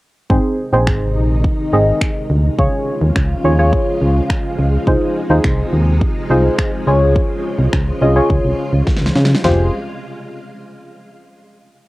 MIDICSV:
0, 0, Header, 1, 5, 480
1, 0, Start_track
1, 0, Key_signature, -4, "minor"
1, 0, Tempo, 571429
1, 252, Time_signature, 4, 2, 24, 8
1, 9981, End_track
2, 0, Start_track
2, 0, Title_t, "Synth stab"
2, 0, Program_c, 0, 62
2, 250, Note_on_c, 0, 60, 85
2, 251, Note_on_c, 0, 63, 78
2, 253, Note_on_c, 0, 68, 73
2, 254, Note_on_c, 0, 72, 86
2, 471, Note_off_c, 0, 60, 0
2, 472, Note_off_c, 0, 63, 0
2, 473, Note_off_c, 0, 68, 0
2, 473, Note_off_c, 0, 72, 0
2, 610, Note_on_c, 0, 60, 82
2, 612, Note_on_c, 0, 63, 79
2, 613, Note_on_c, 0, 68, 78
2, 615, Note_on_c, 0, 72, 99
2, 1125, Note_off_c, 0, 60, 0
2, 1126, Note_off_c, 0, 63, 0
2, 1126, Note_off_c, 0, 68, 0
2, 1127, Note_off_c, 0, 72, 0
2, 1450, Note_on_c, 0, 60, 82
2, 1452, Note_on_c, 0, 63, 77
2, 1453, Note_on_c, 0, 68, 73
2, 1454, Note_on_c, 0, 75, 91
2, 1892, Note_off_c, 0, 60, 0
2, 1892, Note_off_c, 0, 63, 0
2, 1893, Note_off_c, 0, 68, 0
2, 1894, Note_off_c, 0, 75, 0
2, 2170, Note_on_c, 0, 61, 81
2, 2172, Note_on_c, 0, 65, 75
2, 2173, Note_on_c, 0, 68, 75
2, 2175, Note_on_c, 0, 73, 87
2, 2611, Note_off_c, 0, 61, 0
2, 2612, Note_off_c, 0, 65, 0
2, 2613, Note_off_c, 0, 68, 0
2, 2614, Note_off_c, 0, 73, 0
2, 2890, Note_on_c, 0, 61, 85
2, 2891, Note_on_c, 0, 65, 82
2, 2893, Note_on_c, 0, 68, 77
2, 2894, Note_on_c, 0, 73, 95
2, 2965, Note_off_c, 0, 61, 0
2, 2965, Note_off_c, 0, 65, 0
2, 2966, Note_off_c, 0, 68, 0
2, 2967, Note_off_c, 0, 73, 0
2, 3010, Note_on_c, 0, 61, 89
2, 3011, Note_on_c, 0, 65, 81
2, 3013, Note_on_c, 0, 68, 85
2, 3015, Note_on_c, 0, 73, 100
2, 3598, Note_off_c, 0, 61, 0
2, 3599, Note_off_c, 0, 65, 0
2, 3600, Note_off_c, 0, 68, 0
2, 3601, Note_off_c, 0, 73, 0
2, 4090, Note_on_c, 0, 63, 84
2, 4092, Note_on_c, 0, 65, 75
2, 4093, Note_on_c, 0, 68, 73
2, 4095, Note_on_c, 0, 72, 91
2, 4311, Note_off_c, 0, 63, 0
2, 4312, Note_off_c, 0, 65, 0
2, 4313, Note_off_c, 0, 68, 0
2, 4314, Note_off_c, 0, 72, 0
2, 4451, Note_on_c, 0, 63, 83
2, 4452, Note_on_c, 0, 65, 77
2, 4454, Note_on_c, 0, 68, 78
2, 4455, Note_on_c, 0, 72, 90
2, 4965, Note_off_c, 0, 63, 0
2, 4966, Note_off_c, 0, 65, 0
2, 4967, Note_off_c, 0, 68, 0
2, 4967, Note_off_c, 0, 72, 0
2, 5290, Note_on_c, 0, 63, 84
2, 5292, Note_on_c, 0, 65, 77
2, 5294, Note_on_c, 0, 68, 76
2, 5295, Note_on_c, 0, 72, 96
2, 5732, Note_off_c, 0, 63, 0
2, 5732, Note_off_c, 0, 65, 0
2, 5733, Note_off_c, 0, 68, 0
2, 5734, Note_off_c, 0, 72, 0
2, 5770, Note_on_c, 0, 61, 88
2, 5772, Note_on_c, 0, 65, 81
2, 5773, Note_on_c, 0, 68, 81
2, 5774, Note_on_c, 0, 73, 101
2, 6539, Note_off_c, 0, 61, 0
2, 6540, Note_off_c, 0, 65, 0
2, 6541, Note_off_c, 0, 68, 0
2, 6541, Note_off_c, 0, 73, 0
2, 6731, Note_on_c, 0, 61, 86
2, 6732, Note_on_c, 0, 65, 82
2, 6734, Note_on_c, 0, 68, 81
2, 6735, Note_on_c, 0, 75, 95
2, 6805, Note_off_c, 0, 61, 0
2, 6806, Note_off_c, 0, 65, 0
2, 6807, Note_off_c, 0, 68, 0
2, 6807, Note_off_c, 0, 75, 0
2, 6850, Note_on_c, 0, 61, 84
2, 6852, Note_on_c, 0, 65, 82
2, 6853, Note_on_c, 0, 68, 83
2, 6854, Note_on_c, 0, 73, 96
2, 7438, Note_off_c, 0, 61, 0
2, 7439, Note_off_c, 0, 65, 0
2, 7440, Note_off_c, 0, 68, 0
2, 7440, Note_off_c, 0, 73, 0
2, 7932, Note_on_c, 0, 65, 78
2, 7933, Note_on_c, 0, 67, 74
2, 7933, Note_on_c, 0, 68, 74
2, 7933, Note_on_c, 0, 72, 92
2, 8155, Note_off_c, 0, 65, 0
2, 8156, Note_off_c, 0, 67, 0
2, 8156, Note_off_c, 0, 68, 0
2, 8156, Note_off_c, 0, 72, 0
2, 9981, End_track
3, 0, Start_track
3, 0, Title_t, "String machine"
3, 0, Program_c, 1, 50
3, 253, Note_on_c, 1, 48, 85
3, 253, Note_on_c, 1, 51, 76
3, 253, Note_on_c, 1, 56, 75
3, 253, Note_on_c, 1, 63, 89
3, 2153, Note_off_c, 1, 51, 0
3, 2154, Note_off_c, 1, 48, 0
3, 2154, Note_off_c, 1, 63, 0
3, 2174, Note_on_c, 1, 65, 88
3, 2175, Note_on_c, 1, 49, 80
3, 2175, Note_on_c, 1, 53, 75
3, 4074, Note_off_c, 1, 49, 0
3, 4074, Note_off_c, 1, 65, 0
3, 4093, Note_on_c, 1, 48, 85
3, 4093, Note_on_c, 1, 63, 90
3, 5756, Note_off_c, 1, 48, 0
3, 5756, Note_off_c, 1, 63, 0
3, 5773, Note_on_c, 1, 49, 78
3, 5773, Note_on_c, 1, 65, 88
3, 7899, Note_off_c, 1, 56, 0
3, 7900, Note_off_c, 1, 53, 0
3, 7911, Note_off_c, 1, 49, 0
3, 7911, Note_off_c, 1, 65, 0
3, 9981, End_track
4, 0, Start_track
4, 0, Title_t, "FM bass"
4, 0, Program_c, 2, 39
4, 253, Note_on_c, 2, 32, 110
4, 334, Note_off_c, 2, 32, 0
4, 611, Note_on_c, 2, 34, 81
4, 733, Note_on_c, 2, 32, 100
4, 746, Note_off_c, 2, 34, 0
4, 972, Note_on_c, 2, 34, 100
4, 984, Note_off_c, 2, 32, 0
4, 1216, Note_off_c, 2, 34, 0
4, 1452, Note_on_c, 2, 32, 94
4, 1615, Note_off_c, 2, 32, 0
4, 1932, Note_on_c, 2, 38, 89
4, 2095, Note_off_c, 2, 38, 0
4, 2172, Note_on_c, 2, 37, 112
4, 2254, Note_off_c, 2, 37, 0
4, 2532, Note_on_c, 2, 39, 94
4, 2614, Note_off_c, 2, 39, 0
4, 2653, Note_on_c, 2, 37, 98
4, 2816, Note_off_c, 2, 37, 0
4, 2892, Note_on_c, 2, 39, 90
4, 3136, Note_off_c, 2, 39, 0
4, 3373, Note_on_c, 2, 37, 88
4, 3536, Note_off_c, 2, 37, 0
4, 3853, Note_on_c, 2, 37, 90
4, 4016, Note_off_c, 2, 37, 0
4, 4093, Note_on_c, 2, 36, 105
4, 4174, Note_off_c, 2, 36, 0
4, 4453, Note_on_c, 2, 39, 93
4, 4534, Note_off_c, 2, 39, 0
4, 4573, Note_on_c, 2, 36, 94
4, 4736, Note_off_c, 2, 36, 0
4, 4812, Note_on_c, 2, 39, 91
4, 5056, Note_off_c, 2, 39, 0
4, 5292, Note_on_c, 2, 36, 94
4, 5455, Note_off_c, 2, 36, 0
4, 5772, Note_on_c, 2, 37, 99
4, 6016, Note_off_c, 2, 37, 0
4, 6372, Note_on_c, 2, 36, 87
4, 6453, Note_off_c, 2, 36, 0
4, 6493, Note_on_c, 2, 37, 96
4, 6656, Note_off_c, 2, 37, 0
4, 6733, Note_on_c, 2, 36, 96
4, 6895, Note_off_c, 2, 36, 0
4, 6971, Note_on_c, 2, 37, 94
4, 7053, Note_off_c, 2, 37, 0
4, 7093, Note_on_c, 2, 36, 87
4, 7174, Note_off_c, 2, 36, 0
4, 7332, Note_on_c, 2, 37, 85
4, 7413, Note_off_c, 2, 37, 0
4, 7451, Note_on_c, 2, 37, 48
4, 7499, Note_off_c, 2, 37, 0
4, 7573, Note_on_c, 2, 37, 85
4, 7654, Note_off_c, 2, 37, 0
4, 7693, Note_on_c, 2, 49, 98
4, 7856, Note_off_c, 2, 49, 0
4, 7933, Note_on_c, 2, 29, 98
4, 8156, Note_off_c, 2, 29, 0
4, 9981, End_track
5, 0, Start_track
5, 0, Title_t, "Drums"
5, 253, Note_on_c, 9, 36, 107
5, 337, Note_off_c, 9, 36, 0
5, 732, Note_on_c, 9, 26, 100
5, 733, Note_on_c, 9, 36, 96
5, 816, Note_off_c, 9, 26, 0
5, 817, Note_off_c, 9, 36, 0
5, 1211, Note_on_c, 9, 36, 97
5, 1295, Note_off_c, 9, 36, 0
5, 1691, Note_on_c, 9, 36, 106
5, 1692, Note_on_c, 9, 26, 113
5, 1775, Note_off_c, 9, 36, 0
5, 1776, Note_off_c, 9, 26, 0
5, 2172, Note_on_c, 9, 36, 109
5, 2256, Note_off_c, 9, 36, 0
5, 2652, Note_on_c, 9, 26, 101
5, 2653, Note_on_c, 9, 36, 98
5, 2736, Note_off_c, 9, 26, 0
5, 2737, Note_off_c, 9, 36, 0
5, 3132, Note_on_c, 9, 36, 97
5, 3216, Note_off_c, 9, 36, 0
5, 3611, Note_on_c, 9, 36, 107
5, 3613, Note_on_c, 9, 26, 112
5, 3695, Note_off_c, 9, 36, 0
5, 3697, Note_off_c, 9, 26, 0
5, 4093, Note_on_c, 9, 36, 106
5, 4177, Note_off_c, 9, 36, 0
5, 4572, Note_on_c, 9, 26, 101
5, 4574, Note_on_c, 9, 36, 96
5, 4656, Note_off_c, 9, 26, 0
5, 4658, Note_off_c, 9, 36, 0
5, 5052, Note_on_c, 9, 36, 98
5, 5136, Note_off_c, 9, 36, 0
5, 5531, Note_on_c, 9, 36, 105
5, 5532, Note_on_c, 9, 26, 115
5, 5615, Note_off_c, 9, 36, 0
5, 5616, Note_off_c, 9, 26, 0
5, 6012, Note_on_c, 9, 36, 113
5, 6096, Note_off_c, 9, 36, 0
5, 6493, Note_on_c, 9, 26, 107
5, 6493, Note_on_c, 9, 36, 96
5, 6577, Note_off_c, 9, 26, 0
5, 6577, Note_off_c, 9, 36, 0
5, 6971, Note_on_c, 9, 36, 96
5, 7055, Note_off_c, 9, 36, 0
5, 7450, Note_on_c, 9, 36, 102
5, 7452, Note_on_c, 9, 38, 57
5, 7532, Note_off_c, 9, 38, 0
5, 7532, Note_on_c, 9, 38, 55
5, 7534, Note_off_c, 9, 36, 0
5, 7611, Note_off_c, 9, 38, 0
5, 7611, Note_on_c, 9, 38, 74
5, 7691, Note_off_c, 9, 38, 0
5, 7691, Note_on_c, 9, 38, 67
5, 7772, Note_off_c, 9, 38, 0
5, 7772, Note_on_c, 9, 38, 86
5, 7852, Note_off_c, 9, 38, 0
5, 7852, Note_on_c, 9, 38, 82
5, 7932, Note_off_c, 9, 38, 0
5, 7932, Note_on_c, 9, 38, 98
5, 7932, Note_on_c, 9, 43, 97
5, 8016, Note_off_c, 9, 38, 0
5, 8016, Note_off_c, 9, 43, 0
5, 9981, End_track
0, 0, End_of_file